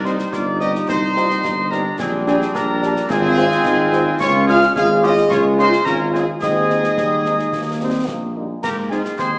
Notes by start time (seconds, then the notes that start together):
Already playing: C2 G3 D#4
0.04 G3 C4 D#4 C5 C6, snare
0.19 snare
0.33 G1 F4 D5 D6, concert bass drum, snare
0.59 G3 C4 D#4 G4 D#5 D#6, snare
0.75 snare
0.88 C2 D#4 C5 C6, concert bass drum, snare
1.16 G3 C4 D#4 F4, snare
1.30 snare
1.43 G1 D#4, concert bass drum, snare
1.70 G3 C4 D4 D#4 A#4 A#5, snare
1.98 A#1 G3 C4 D4 G#4 G#5, concert bass drum, snare, crash
2.26 G3 C4 D4 G#4 G#5, snare
2.42 snare
2.54 A#1 D4 A#4 A#5, concert bass drum, snare
2.82 G3 D4, snare
2.96 snare
3.09 G#1 G#3 C4 F4 G#4 G#5, concert bass drum, snare
3.37 G#3 C4 F4, snare
3.51 snare
3.64 G#1 D#4, concert bass drum, snare
3.92 G#3 C4 F4, snare
4.19 C#2 G#3 C#4 F4 C#5 C#6, concert bass drum, snare, crash
4.47 G#3 C#4 F4 G#4 F5 F6, snare
4.63 snare
4.75 G#1 G#3 F4 G#4 F5 F6, concert bass drum, snare
5.03 G#3 C#4 F4 G4 D#5 D#6, snare
5.17 snare
5.30 C#2 G#3 F4 C#5 C#6, concert bass drum, snare
5.58 G#3 C#4 D#4 F4 C5 C6, snare
5.73 snare
5.85 G#1 C#4 F4 A#4 A#5, concert bass drum, snare
6.13 G#3 C4 C#4 F4 G#4 G#5, snare
6.40 D#2 G#3 C4 D#4 G#4 D#5 D#6, concert bass drum, snare, crash
6.70 G#3 C4 D#4, snare
6.84 snare
6.97 D#2 G3, concert bass drum, snare
7.24 G#3 C4 D#4, snare
7.39 snare
7.52 D#2 A#3, concert bass drum, snare
7.80 G3 A#3 C4 D#4
8.07 A#1 A#3, concert bass drum, snare
8.35 G3 G#3 A#3 D#4
8.63 G#2 A#3 G4 A#4 A#5, concert bass drum, snare, crash
8.89 G#3 C4 D#4 F4 G#4 G#5, snare
9.05 snare
9.17 D#2 G#3 C4 G#4 C5 C6, concert bass drum, snare